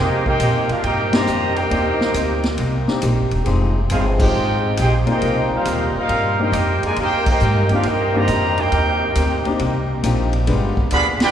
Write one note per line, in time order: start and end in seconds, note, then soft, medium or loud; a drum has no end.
0.00 0.27 C3 medium
0.00 0.39 C3 medium
0.00 0.25 A#3 loud
0.00 0.28 A#3 medium
0.00 0.25 D#4 loud
0.00 0.26 D#4 medium
0.00 0.29 D#4 medium
0.00 0.25 G4 loud
0.00 0.29 G4 medium
0.00 0.26 A#4 loud
0.00 0.26 C5 medium
0.00 0.26 G5 loud
0.26 0.67 A#3 medium
0.26 0.67 D#4 medium
0.26 0.67 D#4 loud
0.26 0.67 G4 medium
0.26 0.68 A#4 medium
0.26 0.68 C5 medium
0.26 0.67 G5 loud
0.26 kick medium
0.40 0.68 A#2 loud
0.40 0.71 C3 medium
0.40 0.72 A#3 medium
0.40 0.72 D#4 medium
0.40 0.72 G4 medium
0.40 hi-hat pedal medium
0.40 ride medium
0.69 0.85 D4 medium
0.69 0.84 F4 medium
0.69 0.85 G4 medium
0.69 0.83 A#4 medium
0.69 0.84 F5 loud
0.69 muted upright bass stroke soft
0.69 ride medium
0.83 1.26 G2 medium
0.83 1.14 C3 medium
0.83 1.15 A#3 medium
0.83 1.12 A#3 medium
0.83 1.12 D#4 medium
0.83 1.16 D#4 medium
0.83 1.12 G4 medium
0.83 1.16 G4 medium
0.83 1.12 A#4 loud
0.83 1.12 C5 medium
0.83 1.12 G5 loud
0.83 ride medium
1.13 1.58 D#3 loud
1.13 1.58 G3 medium
1.13 1.26 A#3 medium
1.13 1.58 A#3 medium
1.13 1.26 C4 medium
1.13 1.26 D4 medium
1.13 1.26 D#4 medium
1.13 1.26 G4 medium
1.13 1.58 G4 medium
1.13 1.55 C5 loud
1.13 1.58 D#5 loud
1.13 1.58 A#5 loud
1.13 snare medium
1.13 ride medium
1.26 1.70 F2 loud
1.26 1.58 C3 medium
1.26 1.58 A#3 medium
1.26 1.59 D#4 medium
1.26 1.59 G4 medium
1.26 hi-hat pedal medium
1.56 2.46 A#3 medium
1.56 2.45 D#4 medium
1.56 2.46 D#4 medium
1.56 2.46 G4 medium
1.56 2.45 A#4 loud
1.56 2.45 C5 medium
1.56 2.45 G5 loud
1.56 ride medium
1.70 2.14 D#2 medium
1.70 2.02 C3 medium
1.70 2.39 A#3 medium
1.70 2.02 A#3 medium
1.70 2.39 C4 medium
1.70 2.39 D#4 medium
1.70 2.03 D#4 medium
1.70 2.40 G4 medium
1.70 2.03 G4 medium
1.70 2.39 D5 medium
1.70 ride medium
2.01 snare medium
2.14 2.57 D2 medium
2.14 2.46 C3 medium
2.14 2.47 A#3 medium
2.14 2.47 D#4 medium
2.14 2.47 G4 medium
2.14 hi-hat pedal medium
2.14 ride medium
2.44 snare medium
2.44 ride medium
2.58 2.87 C2 medium
2.58 2.90 C3 medium
2.58 2.90 A#3 medium
2.58 2.91 D#4 medium
2.58 2.91 G4 medium
2.58 ride medium
2.88 3.01 A#3 medium
2.88 3.01 C4 medium
2.88 3.02 D4 medium
2.88 3.02 D#4 medium
2.88 3.02 G4 medium
2.88 snare medium
3.02 3.18 A#1 loud
3.02 3.34 C3 medium
3.02 3.34 A#3 medium
3.02 3.35 D#4 medium
3.02 3.35 G4 medium
3.02 hi-hat pedal medium
3.02 ride medium
3.17 3.32 G1 medium
3.31 3.46 D#1 medium
3.31 ride medium
3.44 3.89 F1 medium
3.44 3.78 F3 medium
3.44 3.72 G#3 medium
3.44 3.73 C4 medium
3.44 3.78 C4 medium
3.44 3.73 D#4 medium
3.44 3.78 D#4 medium
3.44 3.73 F4 medium
3.44 3.73 G4 medium
3.44 ride medium
3.49 3.79 G#4 medium
3.90 4.34 G1 loud
3.90 4.22 F3 medium
3.90 4.05 G#3 medium
3.90 4.04 C4 medium
3.90 4.22 C4 medium
3.90 4.04 D#4 medium
3.90 4.22 D#4 medium
3.90 4.05 F4 medium
3.90 4.04 G#4 medium
3.90 4.04 C5 medium
3.90 4.04 F5 medium
3.90 hi-hat pedal medium
3.90 ride medium
3.94 4.23 G#4 medium
4.20 4.75 G#3 medium
4.20 4.75 C4 medium
4.20 4.75 D#4 medium
4.20 4.76 F4 medium
4.20 4.76 G4 medium
4.20 4.75 G4 medium
4.20 4.75 C5 medium
4.20 4.75 D#5 medium
4.20 4.75 G5 loud
4.20 kick loud
4.20 crash medium
4.35 4.77 G#1 medium
4.35 4.66 F3 medium
4.35 4.66 C4 medium
4.35 4.67 D#4 medium
4.35 4.67 G#4 medium
4.77 5.06 A#1 loud
4.77 5.09 F3 medium
4.77 5.09 C4 medium
4.77 5.09 D#4 medium
4.77 4.93 D#4 medium
4.77 5.10 G#4 medium
4.77 4.93 G#4 medium
4.77 4.93 C5 medium
4.77 4.93 G5 loud
4.77 hi-hat pedal medium
4.77 ride medium
4.81 4.94 G4 medium
5.06 5.62 A#3 medium
5.06 5.62 C4 medium
5.06 5.62 D#4 medium
5.06 5.63 F4 medium
5.06 5.50 A#4 medium
5.06 5.50 C5 medium
5.06 5.62 D5 medium
5.06 5.50 G5 loud
5.06 muted upright bass stroke soft
5.06 ride medium
5.10 5.50 A#3 medium
5.10 5.50 D#4 medium
5.10 5.50 G4 medium
5.22 5.50 C2 medium
5.22 5.53 C3 soft
5.22 5.54 A#3 medium
5.22 5.54 D#4 medium
5.22 5.55 G4 medium
5.22 ride medium
5.50 5.93 G3 medium
5.50 5.94 A#3 medium
5.50 5.93 F4 medium
5.50 muted upright bass stroke soft
5.55 5.94 D#4 medium
5.55 5.94 A#4 medium
5.55 5.94 C5 medium
5.55 5.94 F5 medium
5.65 5.93 D#2 loud
5.65 5.97 C3 medium
5.65 5.97 A#3 medium
5.65 5.98 D#4 medium
5.65 5.98 G4 medium
5.65 hi-hat pedal medium
5.65 ride medium
5.95 6.38 G3 medium
5.95 6.38 A#3 medium
5.95 6.38 D#4 loud
5.95 6.37 F4 medium
5.95 6.38 A#4 loud
5.95 6.38 C5 medium
5.95 6.38 F5 loud
5.95 muted upright bass stroke soft
6.09 6.52 G2 medium
6.09 6.41 C3 medium
6.09 6.41 A#3 medium
6.09 6.42 D#4 medium
6.09 6.42 G4 medium
6.09 ride medium
6.39 6.52 A#3 medium
6.39 6.85 A#3 medium
6.39 6.52 C4 medium
6.39 6.52 D4 medium
6.39 6.52 D#4 medium
6.39 6.84 D#4 medium
6.39 6.53 G4 medium
6.39 6.84 G4 medium
6.39 6.84 A#4 loud
6.39 6.85 C5 loud
6.39 6.84 G5 medium
6.52 6.80 F2 loud
6.52 6.85 C3 medium
6.52 6.85 A#3 medium
6.52 6.85 D#4 medium
6.52 6.86 G4 medium
6.52 hi-hat pedal medium
6.52 ride medium
6.82 6.97 G#3 medium
6.82 6.97 F4 medium
6.82 6.97 A#4 medium
6.82 6.98 D5 medium
6.82 6.98 G#5 loud
6.82 muted upright bass stroke soft
6.82 ride medium
6.96 7.40 D#2 medium
6.96 7.29 C3 medium
6.96 7.29 A#3 medium
6.96 7.26 A#3 medium
6.96 7.26 D#4 loud
6.96 7.26 D#4 medium
6.96 7.30 D#4 medium
6.96 7.26 G4 loud
6.96 7.26 A#4 loud
6.96 ride medium
7.01 7.30 G4 medium
7.01 7.27 C5 medium
7.01 7.27 G5 loud
7.26 7.68 A#3 medium
7.26 7.68 D#4 medium
7.26 7.69 D#4 medium
7.26 7.68 G4 medium
7.26 7.69 A#4 medium
7.26 7.69 C5 medium
7.26 7.69 G5 loud
7.26 kick medium
7.26 crash medium
7.40 7.55 G#2 loud
7.40 7.72 C3 medium
7.40 7.73 A#3 medium
7.40 7.73 D#4 medium
7.40 7.73 G4 medium
7.40 hi-hat pedal medium
7.55 7.70 G2 medium
7.69 7.84 D#2 medium
7.69 7.84 A#3 medium
7.69 7.84 C4 medium
7.69 7.84 D4 medium
7.69 7.84 D#4 medium
7.69 7.85 F4 medium
7.69 7.84 G4 medium
7.69 ride medium
7.73 7.85 D4 medium
7.73 7.86 G4 medium
7.73 7.86 A#4 medium
7.73 7.86 F5 loud
7.83 8.27 G2 medium
7.83 8.16 C3 medium
7.83 8.16 A#3 medium
7.83 8.15 A#3 medium
7.83 8.17 D#4 medium
7.83 8.16 D#4 medium
7.83 8.16 G4 medium
7.83 ride medium
7.88 8.16 D#4 loud
7.88 8.17 G4 medium
7.88 8.16 A#4 loud
7.88 8.16 C5 loud
7.88 8.16 G5 loud
8.15 8.59 D#3 loud
8.15 8.59 G3 medium
8.15 8.28 A#3 medium
8.15 8.58 A#3 medium
8.15 8.27 C4 medium
8.15 8.28 D4 medium
8.15 8.28 D#4 medium
8.15 8.28 G4 medium
8.15 8.60 G4 loud
8.15 8.58 C5 loud
8.15 8.60 D#5 loud
8.15 8.60 A#5 loud
8.28 8.71 F2 loud
8.28 8.59 C3 medium
8.28 8.60 A#3 medium
8.28 8.60 D#4 medium
8.28 8.60 G4 medium
8.28 hi-hat pedal medium
8.28 ride medium
8.58 9.47 A#3 medium
8.58 9.47 D#4 medium
8.58 9.47 G4 medium
8.58 9.47 A#4 medium
8.58 9.47 C5 medium
8.58 9.47 G5 loud
8.58 ride medium
8.71 9.15 D#2 medium
8.71 9.03 C3 medium
8.71 9.03 A#3 medium
8.71 9.04 D#4 medium
8.71 9.04 G4 medium
8.71 ride medium
9.15 9.43 D2 loud
9.15 9.47 C3 medium
9.15 9.47 A#3 medium
9.15 9.48 D#4 medium
9.15 9.48 G4 medium
9.15 hi-hat pedal medium
9.15 ride medium
9.45 9.59 A#3 medium
9.45 9.59 C4 medium
9.45 9.59 D4 medium
9.45 9.59 D#4 medium
9.45 9.60 G4 medium
9.45 muted upright bass stroke soft
9.45 ride medium
9.59 10.03 C2 medium
9.59 9.91 C3 medium
9.59 9.91 A#3 medium
9.59 9.92 D#4 medium
9.59 9.93 G4 medium
9.59 ride medium
10.03 10.46 A#1 loud
10.03 10.35 C3 medium
10.03 10.30 A#3 medium
10.03 10.35 A#3 medium
10.03 10.31 C4 medium
10.03 10.31 D4 medium
10.03 10.31 D#4 medium
10.03 10.36 D#4 medium
10.03 10.31 F4 medium
10.03 10.36 G4 medium
10.03 hi-hat pedal medium
10.03 ride medium
10.33 ride medium
10.47 10.75 G1 medium
10.47 10.79 G3 medium
10.47 10.74 G#3 medium
10.47 10.74 B3 medium
10.47 10.79 B3 medium
10.47 10.75 D4 medium
10.47 10.75 F4 medium
10.47 10.80 F4 medium
10.47 10.75 G4 medium
10.47 10.80 G#4 medium
10.47 ride medium
10.77 muted upright bass stroke soft
10.77 kick medium
10.91 11.19 D2 loud
10.91 11.05 D3 medium
10.91 11.05 F3 medium
10.91 11.23 G3 medium
10.91 11.05 B3 medium
10.91 11.23 B3 medium
10.91 11.23 F4 medium
10.91 11.06 G#4 medium
10.91 11.24 G#4 medium
10.91 11.06 D5 medium
10.91 11.07 F5 medium
10.91 11.06 B5 loud
10.91 hi-hat pedal medium
10.91 ride loud
11.20 11.31 B3 medium
11.20 11.31 D4 medium
11.20 11.31 F4 loud
11.20 11.31 G4 medium
11.20 11.31 B4 loud
11.20 11.31 D5 loud
11.20 11.31 G5 loud
11.20 muted upright bass stroke soft
11.20 snare loud
11.20 ride medium